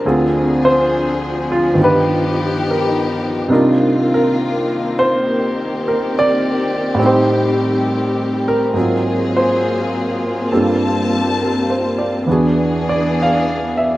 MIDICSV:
0, 0, Header, 1, 3, 480
1, 0, Start_track
1, 0, Key_signature, -2, "minor"
1, 0, Tempo, 867052
1, 21, Time_signature, 4, 2, 24, 8
1, 3381, Tempo, 879765
1, 7672, End_track
2, 0, Start_track
2, 0, Title_t, "Grand piano"
2, 0, Program_c, 0, 0
2, 0, Control_c, 0, 64, 127
2, 0, Note_on_c, 0, 70, 69
2, 29, Control_c, 0, 64, 0
2, 29, Note_on_c, 0, 50, 48
2, 30, Note_on_c, 0, 38, 52
2, 35, Note_on_c, 0, 60, 45
2, 35, Note_on_c, 0, 65, 49
2, 37, Note_on_c, 0, 68, 55
2, 129, Control_c, 0, 64, 127
2, 324, Note_off_c, 0, 70, 0
2, 359, Note_on_c, 0, 72, 79
2, 831, Note_off_c, 0, 65, 0
2, 839, Note_on_c, 0, 65, 60
2, 955, Note_on_c, 0, 43, 49
2, 968, Note_off_c, 0, 72, 0
2, 969, Note_on_c, 0, 51, 42
2, 983, Note_off_c, 0, 38, 0
2, 983, Note_off_c, 0, 50, 0
2, 985, Note_on_c, 0, 59, 40
2, 986, Note_off_c, 0, 60, 0
2, 986, Note_off_c, 0, 65, 0
2, 987, Note_off_c, 0, 68, 0
2, 987, Control_c, 0, 64, 0
2, 1001, Note_on_c, 0, 65, 42
2, 1014, Note_on_c, 0, 67, 49
2, 1019, Note_on_c, 0, 71, 72
2, 1090, Control_c, 0, 64, 127
2, 1455, Note_off_c, 0, 71, 0
2, 1498, Note_on_c, 0, 70, 60
2, 1926, Note_off_c, 0, 43, 0
2, 1927, Note_on_c, 0, 48, 57
2, 1933, Note_off_c, 0, 51, 0
2, 1933, Note_on_c, 0, 55, 51
2, 1938, Note_on_c, 0, 62, 52
2, 1941, Note_off_c, 0, 59, 0
2, 1943, Note_off_c, 0, 65, 0
2, 1945, Control_c, 0, 64, 0
2, 1946, Note_on_c, 0, 63, 55
2, 1947, Note_off_c, 0, 70, 0
2, 1952, Note_on_c, 0, 65, 51
2, 1955, Note_on_c, 0, 70, 58
2, 1956, Note_off_c, 0, 67, 0
2, 2049, Control_c, 0, 64, 127
2, 2284, Note_off_c, 0, 70, 0
2, 2292, Note_on_c, 0, 70, 70
2, 2732, Note_off_c, 0, 70, 0
2, 2762, Note_on_c, 0, 72, 82
2, 3255, Note_on_c, 0, 70, 69
2, 3373, Note_off_c, 0, 72, 0
2, 3396, Note_off_c, 0, 70, 0
2, 3425, Note_on_c, 0, 74, 88
2, 3838, Note_on_c, 0, 45, 58
2, 3841, Note_off_c, 0, 55, 0
2, 3849, Note_on_c, 0, 55, 51
2, 3855, Note_off_c, 0, 48, 0
2, 3860, Note_off_c, 0, 62, 0
2, 3860, Note_off_c, 0, 74, 0
2, 3864, Note_off_c, 0, 63, 0
2, 3865, Note_on_c, 0, 60, 52
2, 3867, Note_off_c, 0, 65, 0
2, 3868, Control_c, 0, 64, 0
2, 3882, Note_on_c, 0, 63, 50
2, 3895, Note_on_c, 0, 67, 60
2, 3901, Note_on_c, 0, 72, 57
2, 3972, Control_c, 0, 64, 127
2, 4654, Note_off_c, 0, 72, 0
2, 4676, Note_on_c, 0, 70, 76
2, 4807, Note_off_c, 0, 45, 0
2, 4812, Note_off_c, 0, 55, 0
2, 4815, Note_on_c, 0, 44, 39
2, 4819, Note_off_c, 0, 60, 0
2, 4825, Control_c, 0, 64, 0
2, 4825, Note_on_c, 0, 54, 40
2, 4827, Note_on_c, 0, 60, 38
2, 4829, Note_off_c, 0, 63, 0
2, 4832, Note_off_c, 0, 70, 0
2, 4835, Note_off_c, 0, 67, 0
2, 4838, Note_on_c, 0, 65, 35
2, 4840, Note_on_c, 0, 70, 45
2, 4920, Control_c, 0, 64, 127
2, 5159, Note_on_c, 0, 72, 62
2, 5772, Note_off_c, 0, 72, 0
2, 5781, Note_off_c, 0, 44, 0
2, 5784, Note_off_c, 0, 60, 0
2, 5784, Note_off_c, 0, 65, 0
2, 5786, Note_off_c, 0, 54, 0
2, 5788, Note_on_c, 0, 43, 46
2, 5788, Note_on_c, 0, 58, 44
2, 5790, Control_c, 0, 64, 0
2, 5792, Note_on_c, 0, 55, 43
2, 5792, Note_on_c, 0, 60, 42
2, 5792, Note_on_c, 0, 65, 39
2, 5794, Note_off_c, 0, 70, 0
2, 5797, Note_on_c, 0, 69, 47
2, 5893, Control_c, 0, 64, 127
2, 6277, Note_on_c, 0, 70, 42
2, 6433, Note_on_c, 0, 72, 39
2, 6565, Note_off_c, 0, 70, 0
2, 6588, Note_on_c, 0, 74, 44
2, 6676, Note_off_c, 0, 72, 0
2, 6740, Note_on_c, 0, 40, 45
2, 6746, Note_off_c, 0, 43, 0
2, 6746, Note_off_c, 0, 58, 0
2, 6746, Note_on_c, 0, 52, 41
2, 6748, Note_off_c, 0, 55, 0
2, 6748, Note_off_c, 0, 60, 0
2, 6748, Note_off_c, 0, 65, 0
2, 6750, Control_c, 0, 64, 0
2, 6751, Note_off_c, 0, 69, 0
2, 6756, Note_on_c, 0, 62, 41
2, 6764, Note_on_c, 0, 66, 38
2, 6768, Note_on_c, 0, 68, 46
2, 6834, Note_off_c, 0, 74, 0
2, 6837, Control_c, 0, 64, 127
2, 7084, Note_on_c, 0, 74, 70
2, 7231, Note_off_c, 0, 74, 0
2, 7263, Note_on_c, 0, 77, 78
2, 7550, Note_off_c, 0, 77, 0
2, 7564, Note_on_c, 0, 76, 70
2, 7672, Note_off_c, 0, 40, 0
2, 7672, Note_off_c, 0, 52, 0
2, 7672, Note_off_c, 0, 62, 0
2, 7672, Note_off_c, 0, 66, 0
2, 7672, Note_off_c, 0, 68, 0
2, 7672, Note_off_c, 0, 76, 0
2, 7672, End_track
3, 0, Start_track
3, 0, Title_t, "String section"
3, 0, Program_c, 1, 48
3, 22, Note_on_c, 1, 60, 56
3, 22, Note_on_c, 1, 62, 51
3, 25, Note_on_c, 1, 68, 65
3, 29, Note_on_c, 1, 53, 65
3, 969, Note_off_c, 1, 60, 0
3, 969, Note_off_c, 1, 62, 0
3, 971, Note_off_c, 1, 68, 0
3, 982, Note_on_c, 1, 67, 79
3, 988, Note_on_c, 1, 59, 58
3, 989, Note_on_c, 1, 63, 59
3, 1923, Note_off_c, 1, 53, 0
3, 1930, Note_off_c, 1, 67, 0
3, 1934, Note_off_c, 1, 59, 0
3, 1934, Note_off_c, 1, 63, 0
3, 1945, Note_on_c, 1, 60, 57
3, 1949, Note_on_c, 1, 51, 61
3, 1949, Note_on_c, 1, 65, 66
3, 1953, Note_on_c, 1, 58, 56
3, 2895, Note_off_c, 1, 65, 0
3, 2899, Note_on_c, 1, 67, 68
3, 3848, Note_off_c, 1, 58, 0
3, 3865, Note_on_c, 1, 55, 57
3, 4799, Note_off_c, 1, 67, 0
3, 4801, Note_off_c, 1, 51, 0
3, 4811, Note_off_c, 1, 55, 0
3, 4815, Note_on_c, 1, 58, 60
3, 4817, Note_on_c, 1, 68, 69
3, 4818, Note_on_c, 1, 54, 66
3, 4821, Note_on_c, 1, 65, 59
3, 5764, Note_off_c, 1, 60, 0
3, 5772, Note_off_c, 1, 54, 0
3, 5772, Note_off_c, 1, 68, 0
3, 5787, Note_on_c, 1, 81, 74
3, 5789, Note_on_c, 1, 55, 58
3, 5791, Note_on_c, 1, 60, 57
3, 6722, Note_off_c, 1, 58, 0
3, 6726, Note_off_c, 1, 65, 0
3, 6736, Note_off_c, 1, 81, 0
3, 6737, Note_off_c, 1, 55, 0
3, 6738, Note_off_c, 1, 60, 0
3, 6754, Note_on_c, 1, 68, 73
3, 6755, Note_on_c, 1, 52, 69
3, 6757, Note_on_c, 1, 59, 61
3, 6758, Note_on_c, 1, 62, 62
3, 7672, Note_off_c, 1, 52, 0
3, 7672, Note_off_c, 1, 59, 0
3, 7672, Note_off_c, 1, 62, 0
3, 7672, Note_off_c, 1, 68, 0
3, 7672, End_track
0, 0, End_of_file